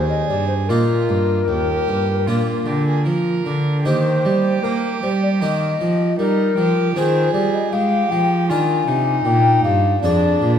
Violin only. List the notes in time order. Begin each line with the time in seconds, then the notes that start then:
Already playing: G#4
0.69 F4
1.48 G4
2.27 F4
2.67 G4
2.87 G#4
3.07 A#4
3.86 G4
6.19 D#4
6.58 G4
6.97 G#4
7.73 G4
8.49 F4
8.88 D#4
10.03 D4